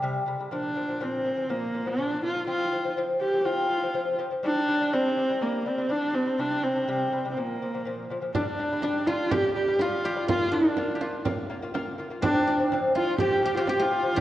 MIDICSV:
0, 0, Header, 1, 5, 480
1, 0, Start_track
1, 0, Tempo, 487409
1, 516, Time_signature, 4, 2, 24, 8
1, 13990, End_track
2, 0, Start_track
2, 0, Title_t, "Guzheng"
2, 0, Program_c, 0, 107
2, 8222, Note_on_c, 0, 62, 72
2, 8690, Note_off_c, 0, 62, 0
2, 8694, Note_on_c, 0, 62, 67
2, 8934, Note_on_c, 0, 65, 76
2, 9172, Note_on_c, 0, 67, 81
2, 9657, Note_off_c, 0, 65, 0
2, 9661, Note_on_c, 0, 65, 76
2, 9896, Note_off_c, 0, 67, 0
2, 9900, Note_on_c, 0, 67, 84
2, 10125, Note_off_c, 0, 65, 0
2, 10129, Note_on_c, 0, 65, 81
2, 10354, Note_off_c, 0, 62, 0
2, 10358, Note_on_c, 0, 62, 66
2, 10780, Note_off_c, 0, 67, 0
2, 10784, Note_on_c, 0, 67, 47
2, 10838, Note_off_c, 0, 65, 0
2, 10842, Note_on_c, 0, 65, 60
2, 12031, Note_off_c, 0, 62, 0
2, 12035, Note_on_c, 0, 62, 95
2, 12278, Note_off_c, 0, 62, 0
2, 12282, Note_on_c, 0, 62, 69
2, 12746, Note_off_c, 0, 65, 0
2, 12750, Note_on_c, 0, 65, 75
2, 12992, Note_off_c, 0, 67, 0
2, 12996, Note_on_c, 0, 67, 78
2, 13245, Note_off_c, 0, 67, 0
2, 13249, Note_on_c, 0, 67, 87
2, 13361, Note_off_c, 0, 65, 0
2, 13365, Note_on_c, 0, 65, 79
2, 13478, Note_off_c, 0, 67, 0
2, 13482, Note_on_c, 0, 67, 91
2, 13579, Note_off_c, 0, 65, 0
2, 13583, Note_on_c, 0, 65, 82
2, 13943, Note_off_c, 0, 67, 0
2, 13947, Note_on_c, 0, 67, 89
2, 13990, Note_off_c, 0, 62, 0
2, 13990, Note_off_c, 0, 65, 0
2, 13990, Note_off_c, 0, 67, 0
2, 13990, End_track
3, 0, Start_track
3, 0, Title_t, "Horsehead fiddle"
3, 0, Program_c, 1, 110
3, 526, Note_on_c, 1, 62, 86
3, 1014, Note_on_c, 1, 60, 80
3, 1029, Note_off_c, 1, 62, 0
3, 1479, Note_on_c, 1, 58, 82
3, 1494, Note_off_c, 1, 60, 0
3, 1846, Note_on_c, 1, 62, 86
3, 1861, Note_off_c, 1, 58, 0
3, 2205, Note_off_c, 1, 62, 0
3, 2214, Note_on_c, 1, 65, 91
3, 2432, Note_off_c, 1, 65, 0
3, 2439, Note_on_c, 1, 65, 101
3, 2889, Note_off_c, 1, 65, 0
3, 3158, Note_on_c, 1, 67, 89
3, 3402, Note_on_c, 1, 65, 96
3, 3417, Note_off_c, 1, 67, 0
3, 4126, Note_off_c, 1, 65, 0
3, 4373, Note_on_c, 1, 62, 109
3, 4858, Note_on_c, 1, 60, 99
3, 4873, Note_off_c, 1, 62, 0
3, 5335, Note_on_c, 1, 58, 81
3, 5349, Note_off_c, 1, 60, 0
3, 5587, Note_on_c, 1, 60, 80
3, 5601, Note_off_c, 1, 58, 0
3, 5820, Note_on_c, 1, 62, 91
3, 5835, Note_off_c, 1, 60, 0
3, 6050, Note_on_c, 1, 60, 83
3, 6064, Note_off_c, 1, 62, 0
3, 6296, Note_on_c, 1, 62, 95
3, 6311, Note_off_c, 1, 60, 0
3, 6536, Note_on_c, 1, 60, 83
3, 6551, Note_off_c, 1, 62, 0
3, 7187, Note_off_c, 1, 60, 0
3, 7199, Note_on_c, 1, 60, 52
3, 7277, Note_on_c, 1, 58, 65
3, 7292, Note_off_c, 1, 60, 0
3, 7985, Note_off_c, 1, 58, 0
3, 8219, Note_on_c, 1, 62, 93
3, 8929, Note_on_c, 1, 65, 90
3, 8944, Note_off_c, 1, 62, 0
3, 9168, Note_on_c, 1, 67, 104
3, 9183, Note_off_c, 1, 65, 0
3, 9401, Note_off_c, 1, 67, 0
3, 9407, Note_on_c, 1, 67, 86
3, 9665, Note_on_c, 1, 65, 90
3, 9679, Note_off_c, 1, 67, 0
3, 10136, Note_off_c, 1, 65, 0
3, 10144, Note_on_c, 1, 65, 97
3, 10376, Note_on_c, 1, 62, 83
3, 10391, Note_off_c, 1, 65, 0
3, 11089, Note_off_c, 1, 62, 0
3, 12035, Note_on_c, 1, 62, 108
3, 12482, Note_off_c, 1, 62, 0
3, 12772, Note_on_c, 1, 65, 90
3, 12988, Note_off_c, 1, 65, 0
3, 12999, Note_on_c, 1, 67, 104
3, 13220, Note_off_c, 1, 67, 0
3, 13238, Note_on_c, 1, 67, 90
3, 13348, Note_off_c, 1, 67, 0
3, 13359, Note_on_c, 1, 65, 87
3, 13478, Note_on_c, 1, 67, 100
3, 13493, Note_off_c, 1, 65, 0
3, 13607, Note_on_c, 1, 65, 95
3, 13622, Note_off_c, 1, 67, 0
3, 13978, Note_off_c, 1, 65, 0
3, 13990, End_track
4, 0, Start_track
4, 0, Title_t, "Lute"
4, 0, Program_c, 2, 24
4, 22, Note_on_c, 2, 48, 96
4, 33, Note_on_c, 2, 55, 105
4, 221, Note_off_c, 2, 48, 0
4, 226, Note_off_c, 2, 55, 0
4, 259, Note_on_c, 2, 48, 67
4, 273, Note_on_c, 2, 55, 74
4, 363, Note_off_c, 2, 48, 0
4, 371, Note_off_c, 2, 55, 0
4, 386, Note_on_c, 2, 48, 51
4, 397, Note_on_c, 2, 55, 61
4, 487, Note_off_c, 2, 48, 0
4, 493, Note_off_c, 2, 55, 0
4, 506, Note_on_c, 2, 46, 81
4, 516, Note_on_c, 2, 53, 87
4, 704, Note_off_c, 2, 46, 0
4, 709, Note_off_c, 2, 53, 0
4, 745, Note_on_c, 2, 46, 63
4, 752, Note_on_c, 2, 53, 73
4, 847, Note_off_c, 2, 46, 0
4, 851, Note_off_c, 2, 53, 0
4, 870, Note_on_c, 2, 46, 61
4, 878, Note_on_c, 2, 53, 67
4, 970, Note_off_c, 2, 46, 0
4, 974, Note_off_c, 2, 53, 0
4, 990, Note_on_c, 2, 46, 90
4, 997, Note_on_c, 2, 53, 93
4, 1187, Note_off_c, 2, 46, 0
4, 1190, Note_off_c, 2, 53, 0
4, 1228, Note_on_c, 2, 46, 58
4, 1236, Note_on_c, 2, 53, 62
4, 1330, Note_off_c, 2, 46, 0
4, 1334, Note_off_c, 2, 53, 0
4, 1341, Note_on_c, 2, 46, 62
4, 1352, Note_on_c, 2, 53, 65
4, 1446, Note_off_c, 2, 46, 0
4, 1452, Note_off_c, 2, 53, 0
4, 1471, Note_on_c, 2, 46, 80
4, 1478, Note_on_c, 2, 53, 91
4, 1668, Note_off_c, 2, 46, 0
4, 1671, Note_off_c, 2, 53, 0
4, 1714, Note_on_c, 2, 46, 63
4, 1722, Note_on_c, 2, 53, 71
4, 1813, Note_off_c, 2, 46, 0
4, 1818, Note_off_c, 2, 53, 0
4, 1827, Note_on_c, 2, 46, 62
4, 1836, Note_on_c, 2, 53, 71
4, 1930, Note_off_c, 2, 46, 0
4, 1935, Note_off_c, 2, 53, 0
4, 1947, Note_on_c, 2, 46, 78
4, 1957, Note_on_c, 2, 53, 89
4, 2146, Note_off_c, 2, 46, 0
4, 2152, Note_off_c, 2, 53, 0
4, 2193, Note_on_c, 2, 46, 62
4, 2202, Note_on_c, 2, 53, 68
4, 2294, Note_off_c, 2, 46, 0
4, 2298, Note_off_c, 2, 53, 0
4, 2312, Note_on_c, 2, 46, 52
4, 2323, Note_on_c, 2, 53, 66
4, 2414, Note_off_c, 2, 46, 0
4, 2419, Note_off_c, 2, 53, 0
4, 2433, Note_on_c, 2, 53, 84
4, 2440, Note_on_c, 2, 60, 93
4, 2631, Note_off_c, 2, 53, 0
4, 2633, Note_off_c, 2, 60, 0
4, 2682, Note_on_c, 2, 53, 67
4, 2687, Note_on_c, 2, 60, 72
4, 2779, Note_off_c, 2, 53, 0
4, 2781, Note_off_c, 2, 60, 0
4, 2802, Note_on_c, 2, 53, 58
4, 2808, Note_on_c, 2, 60, 64
4, 2899, Note_off_c, 2, 53, 0
4, 2902, Note_off_c, 2, 60, 0
4, 2925, Note_on_c, 2, 53, 83
4, 2936, Note_on_c, 2, 60, 98
4, 3117, Note_off_c, 2, 53, 0
4, 3123, Note_off_c, 2, 60, 0
4, 3163, Note_on_c, 2, 53, 63
4, 3169, Note_on_c, 2, 60, 67
4, 3261, Note_off_c, 2, 53, 0
4, 3262, Note_off_c, 2, 60, 0
4, 3281, Note_on_c, 2, 53, 66
4, 3289, Note_on_c, 2, 60, 70
4, 3380, Note_off_c, 2, 53, 0
4, 3383, Note_off_c, 2, 60, 0
4, 3398, Note_on_c, 2, 53, 76
4, 3410, Note_on_c, 2, 60, 89
4, 3594, Note_off_c, 2, 53, 0
4, 3600, Note_off_c, 2, 60, 0
4, 3642, Note_on_c, 2, 53, 64
4, 3652, Note_on_c, 2, 60, 75
4, 3740, Note_off_c, 2, 53, 0
4, 3746, Note_off_c, 2, 60, 0
4, 3766, Note_on_c, 2, 53, 61
4, 3777, Note_on_c, 2, 60, 70
4, 3863, Note_off_c, 2, 53, 0
4, 3868, Note_off_c, 2, 60, 0
4, 3882, Note_on_c, 2, 53, 81
4, 3891, Note_on_c, 2, 60, 89
4, 4077, Note_off_c, 2, 53, 0
4, 4082, Note_off_c, 2, 60, 0
4, 4121, Note_on_c, 2, 53, 79
4, 4131, Note_on_c, 2, 60, 88
4, 4221, Note_off_c, 2, 53, 0
4, 4226, Note_off_c, 2, 60, 0
4, 4244, Note_on_c, 2, 53, 58
4, 4256, Note_on_c, 2, 60, 65
4, 4342, Note_off_c, 2, 53, 0
4, 4348, Note_off_c, 2, 60, 0
4, 4361, Note_on_c, 2, 55, 86
4, 4371, Note_on_c, 2, 62, 88
4, 4557, Note_off_c, 2, 55, 0
4, 4563, Note_off_c, 2, 62, 0
4, 4610, Note_on_c, 2, 55, 72
4, 4619, Note_on_c, 2, 62, 76
4, 4706, Note_off_c, 2, 55, 0
4, 4710, Note_off_c, 2, 62, 0
4, 4728, Note_on_c, 2, 55, 63
4, 4736, Note_on_c, 2, 62, 65
4, 4825, Note_off_c, 2, 55, 0
4, 4829, Note_off_c, 2, 62, 0
4, 4854, Note_on_c, 2, 55, 88
4, 4859, Note_on_c, 2, 62, 103
4, 5045, Note_off_c, 2, 55, 0
4, 5047, Note_off_c, 2, 62, 0
4, 5086, Note_on_c, 2, 55, 62
4, 5096, Note_on_c, 2, 62, 66
4, 5185, Note_off_c, 2, 55, 0
4, 5189, Note_off_c, 2, 62, 0
4, 5211, Note_on_c, 2, 55, 60
4, 5221, Note_on_c, 2, 62, 68
4, 5307, Note_off_c, 2, 55, 0
4, 5312, Note_off_c, 2, 62, 0
4, 5330, Note_on_c, 2, 55, 82
4, 5339, Note_on_c, 2, 62, 83
4, 5523, Note_off_c, 2, 55, 0
4, 5528, Note_off_c, 2, 62, 0
4, 5573, Note_on_c, 2, 55, 67
4, 5580, Note_on_c, 2, 62, 67
4, 5669, Note_off_c, 2, 55, 0
4, 5672, Note_off_c, 2, 62, 0
4, 5688, Note_on_c, 2, 55, 61
4, 5694, Note_on_c, 2, 62, 73
4, 5786, Note_off_c, 2, 55, 0
4, 5789, Note_off_c, 2, 62, 0
4, 5798, Note_on_c, 2, 55, 79
4, 5807, Note_on_c, 2, 62, 89
4, 5998, Note_off_c, 2, 55, 0
4, 6002, Note_off_c, 2, 62, 0
4, 6041, Note_on_c, 2, 55, 59
4, 6052, Note_on_c, 2, 62, 70
4, 6143, Note_off_c, 2, 55, 0
4, 6148, Note_off_c, 2, 62, 0
4, 6165, Note_on_c, 2, 55, 55
4, 6174, Note_on_c, 2, 62, 61
4, 6265, Note_off_c, 2, 55, 0
4, 6269, Note_off_c, 2, 62, 0
4, 6285, Note_on_c, 2, 48, 88
4, 6294, Note_on_c, 2, 55, 94
4, 6481, Note_off_c, 2, 48, 0
4, 6486, Note_off_c, 2, 55, 0
4, 6528, Note_on_c, 2, 48, 66
4, 6536, Note_on_c, 2, 55, 68
4, 6627, Note_off_c, 2, 48, 0
4, 6631, Note_off_c, 2, 55, 0
4, 6649, Note_on_c, 2, 48, 61
4, 6654, Note_on_c, 2, 55, 67
4, 6747, Note_off_c, 2, 48, 0
4, 6750, Note_off_c, 2, 55, 0
4, 6772, Note_on_c, 2, 48, 89
4, 6779, Note_on_c, 2, 55, 98
4, 6965, Note_off_c, 2, 48, 0
4, 6969, Note_off_c, 2, 55, 0
4, 7011, Note_on_c, 2, 48, 61
4, 7022, Note_on_c, 2, 55, 68
4, 7109, Note_off_c, 2, 48, 0
4, 7114, Note_off_c, 2, 55, 0
4, 7138, Note_on_c, 2, 48, 61
4, 7143, Note_on_c, 2, 55, 70
4, 7232, Note_off_c, 2, 48, 0
4, 7234, Note_off_c, 2, 55, 0
4, 7253, Note_on_c, 2, 46, 75
4, 7262, Note_on_c, 2, 53, 83
4, 7446, Note_off_c, 2, 46, 0
4, 7450, Note_off_c, 2, 53, 0
4, 7504, Note_on_c, 2, 46, 61
4, 7508, Note_on_c, 2, 53, 75
4, 7595, Note_off_c, 2, 46, 0
4, 7597, Note_off_c, 2, 53, 0
4, 7625, Note_on_c, 2, 46, 62
4, 7630, Note_on_c, 2, 53, 68
4, 7716, Note_off_c, 2, 46, 0
4, 7718, Note_off_c, 2, 53, 0
4, 7734, Note_on_c, 2, 46, 78
4, 7746, Note_on_c, 2, 53, 84
4, 7926, Note_off_c, 2, 46, 0
4, 7932, Note_off_c, 2, 53, 0
4, 7979, Note_on_c, 2, 46, 70
4, 7988, Note_on_c, 2, 53, 84
4, 8072, Note_off_c, 2, 46, 0
4, 8077, Note_off_c, 2, 53, 0
4, 8088, Note_on_c, 2, 46, 60
4, 8096, Note_on_c, 2, 53, 72
4, 8187, Note_off_c, 2, 46, 0
4, 8191, Note_off_c, 2, 53, 0
4, 8218, Note_on_c, 2, 55, 87
4, 8227, Note_on_c, 2, 62, 95
4, 8408, Note_off_c, 2, 55, 0
4, 8412, Note_off_c, 2, 62, 0
4, 8455, Note_on_c, 2, 55, 73
4, 8466, Note_on_c, 2, 62, 80
4, 8550, Note_off_c, 2, 55, 0
4, 8556, Note_off_c, 2, 62, 0
4, 8587, Note_on_c, 2, 55, 69
4, 8596, Note_on_c, 2, 62, 76
4, 8676, Note_off_c, 2, 55, 0
4, 8680, Note_off_c, 2, 62, 0
4, 8701, Note_on_c, 2, 55, 93
4, 8706, Note_on_c, 2, 62, 97
4, 8889, Note_off_c, 2, 55, 0
4, 8891, Note_off_c, 2, 62, 0
4, 8939, Note_on_c, 2, 55, 63
4, 8946, Note_on_c, 2, 62, 70
4, 9127, Note_off_c, 2, 55, 0
4, 9131, Note_off_c, 2, 62, 0
4, 9172, Note_on_c, 2, 55, 83
4, 9180, Note_on_c, 2, 62, 93
4, 9363, Note_off_c, 2, 55, 0
4, 9367, Note_off_c, 2, 62, 0
4, 9415, Note_on_c, 2, 55, 71
4, 9423, Note_on_c, 2, 62, 72
4, 9509, Note_off_c, 2, 55, 0
4, 9513, Note_off_c, 2, 62, 0
4, 9530, Note_on_c, 2, 55, 70
4, 9539, Note_on_c, 2, 62, 75
4, 9626, Note_off_c, 2, 55, 0
4, 9631, Note_off_c, 2, 62, 0
4, 9644, Note_on_c, 2, 55, 86
4, 9656, Note_on_c, 2, 62, 98
4, 9839, Note_off_c, 2, 55, 0
4, 9845, Note_off_c, 2, 62, 0
4, 9888, Note_on_c, 2, 55, 64
4, 9897, Note_on_c, 2, 62, 65
4, 9984, Note_off_c, 2, 55, 0
4, 9989, Note_off_c, 2, 62, 0
4, 10002, Note_on_c, 2, 55, 69
4, 10014, Note_on_c, 2, 62, 76
4, 10101, Note_off_c, 2, 55, 0
4, 10107, Note_off_c, 2, 62, 0
4, 10128, Note_on_c, 2, 58, 85
4, 10134, Note_on_c, 2, 65, 95
4, 10320, Note_off_c, 2, 58, 0
4, 10323, Note_off_c, 2, 65, 0
4, 10365, Note_on_c, 2, 58, 75
4, 10371, Note_on_c, 2, 65, 78
4, 10462, Note_off_c, 2, 58, 0
4, 10465, Note_off_c, 2, 65, 0
4, 10483, Note_on_c, 2, 58, 71
4, 10490, Note_on_c, 2, 65, 78
4, 10581, Note_off_c, 2, 58, 0
4, 10585, Note_off_c, 2, 65, 0
4, 10611, Note_on_c, 2, 58, 101
4, 10615, Note_on_c, 2, 65, 104
4, 10800, Note_off_c, 2, 58, 0
4, 10802, Note_off_c, 2, 65, 0
4, 10848, Note_on_c, 2, 58, 70
4, 10857, Note_on_c, 2, 65, 78
4, 11038, Note_off_c, 2, 58, 0
4, 11043, Note_off_c, 2, 65, 0
4, 11079, Note_on_c, 2, 58, 98
4, 11093, Note_on_c, 2, 65, 116
4, 11273, Note_off_c, 2, 58, 0
4, 11280, Note_off_c, 2, 65, 0
4, 11323, Note_on_c, 2, 58, 84
4, 11332, Note_on_c, 2, 65, 91
4, 11419, Note_off_c, 2, 58, 0
4, 11423, Note_off_c, 2, 65, 0
4, 11447, Note_on_c, 2, 58, 81
4, 11456, Note_on_c, 2, 65, 89
4, 11541, Note_off_c, 2, 58, 0
4, 11546, Note_off_c, 2, 65, 0
4, 11562, Note_on_c, 2, 58, 109
4, 11569, Note_on_c, 2, 65, 117
4, 11754, Note_off_c, 2, 58, 0
4, 11757, Note_off_c, 2, 65, 0
4, 11798, Note_on_c, 2, 58, 74
4, 11809, Note_on_c, 2, 65, 86
4, 11895, Note_off_c, 2, 58, 0
4, 11901, Note_off_c, 2, 65, 0
4, 11917, Note_on_c, 2, 58, 70
4, 11926, Note_on_c, 2, 65, 80
4, 12015, Note_off_c, 2, 58, 0
4, 12019, Note_off_c, 2, 65, 0
4, 12031, Note_on_c, 2, 53, 88
4, 12041, Note_on_c, 2, 60, 102
4, 12227, Note_off_c, 2, 53, 0
4, 12232, Note_off_c, 2, 60, 0
4, 12274, Note_on_c, 2, 53, 72
4, 12280, Note_on_c, 2, 60, 80
4, 12373, Note_off_c, 2, 53, 0
4, 12376, Note_off_c, 2, 60, 0
4, 12401, Note_on_c, 2, 53, 75
4, 12407, Note_on_c, 2, 60, 83
4, 12496, Note_off_c, 2, 53, 0
4, 12499, Note_off_c, 2, 60, 0
4, 12523, Note_on_c, 2, 53, 96
4, 12536, Note_on_c, 2, 60, 111
4, 12712, Note_off_c, 2, 53, 0
4, 12719, Note_off_c, 2, 60, 0
4, 12763, Note_on_c, 2, 53, 62
4, 12772, Note_on_c, 2, 60, 80
4, 12951, Note_off_c, 2, 53, 0
4, 12956, Note_off_c, 2, 60, 0
4, 13005, Note_on_c, 2, 53, 92
4, 13012, Note_on_c, 2, 60, 95
4, 13192, Note_off_c, 2, 53, 0
4, 13195, Note_off_c, 2, 60, 0
4, 13234, Note_on_c, 2, 53, 69
4, 13240, Note_on_c, 2, 60, 78
4, 13331, Note_off_c, 2, 53, 0
4, 13334, Note_off_c, 2, 60, 0
4, 13352, Note_on_c, 2, 53, 68
4, 13358, Note_on_c, 2, 60, 81
4, 13449, Note_off_c, 2, 53, 0
4, 13452, Note_off_c, 2, 60, 0
4, 13464, Note_on_c, 2, 53, 84
4, 13471, Note_on_c, 2, 60, 107
4, 13660, Note_off_c, 2, 53, 0
4, 13664, Note_off_c, 2, 60, 0
4, 13705, Note_on_c, 2, 53, 62
4, 13715, Note_on_c, 2, 60, 72
4, 13805, Note_off_c, 2, 53, 0
4, 13810, Note_off_c, 2, 60, 0
4, 13816, Note_on_c, 2, 53, 67
4, 13825, Note_on_c, 2, 60, 73
4, 13920, Note_off_c, 2, 53, 0
4, 13924, Note_off_c, 2, 60, 0
4, 13932, Note_on_c, 2, 53, 84
4, 13939, Note_on_c, 2, 60, 97
4, 13990, Note_off_c, 2, 53, 0
4, 13990, Note_off_c, 2, 60, 0
4, 13990, End_track
5, 0, Start_track
5, 0, Title_t, "Frame drum"
5, 8220, Note_on_c, 9, 64, 69
5, 8318, Note_off_c, 9, 64, 0
5, 8457, Note_on_c, 9, 64, 21
5, 8555, Note_off_c, 9, 64, 0
5, 8688, Note_on_c, 9, 64, 56
5, 8786, Note_off_c, 9, 64, 0
5, 8933, Note_on_c, 9, 64, 52
5, 9032, Note_off_c, 9, 64, 0
5, 9174, Note_on_c, 9, 64, 77
5, 9272, Note_off_c, 9, 64, 0
5, 9412, Note_on_c, 9, 64, 24
5, 9510, Note_off_c, 9, 64, 0
5, 9645, Note_on_c, 9, 64, 61
5, 9743, Note_off_c, 9, 64, 0
5, 9894, Note_on_c, 9, 64, 25
5, 9993, Note_off_c, 9, 64, 0
5, 10134, Note_on_c, 9, 64, 76
5, 10232, Note_off_c, 9, 64, 0
5, 10367, Note_on_c, 9, 64, 24
5, 10466, Note_off_c, 9, 64, 0
5, 10605, Note_on_c, 9, 64, 59
5, 10703, Note_off_c, 9, 64, 0
5, 10843, Note_on_c, 9, 64, 53
5, 10941, Note_off_c, 9, 64, 0
5, 11085, Note_on_c, 9, 64, 72
5, 11183, Note_off_c, 9, 64, 0
5, 11323, Note_on_c, 9, 64, 24
5, 11421, Note_off_c, 9, 64, 0
5, 11572, Note_on_c, 9, 64, 62
5, 11671, Note_off_c, 9, 64, 0
5, 11804, Note_on_c, 9, 64, 23
5, 11902, Note_off_c, 9, 64, 0
5, 12043, Note_on_c, 9, 64, 78
5, 12142, Note_off_c, 9, 64, 0
5, 12284, Note_on_c, 9, 64, 22
5, 12382, Note_off_c, 9, 64, 0
5, 12524, Note_on_c, 9, 64, 53
5, 12622, Note_off_c, 9, 64, 0
5, 12758, Note_on_c, 9, 64, 50
5, 12857, Note_off_c, 9, 64, 0
5, 12983, Note_on_c, 9, 64, 70
5, 13081, Note_off_c, 9, 64, 0
5, 13230, Note_on_c, 9, 64, 26
5, 13329, Note_off_c, 9, 64, 0
5, 13464, Note_on_c, 9, 64, 62
5, 13563, Note_off_c, 9, 64, 0
5, 13711, Note_on_c, 9, 64, 23
5, 13810, Note_off_c, 9, 64, 0
5, 13959, Note_on_c, 9, 64, 72
5, 13990, Note_off_c, 9, 64, 0
5, 13990, End_track
0, 0, End_of_file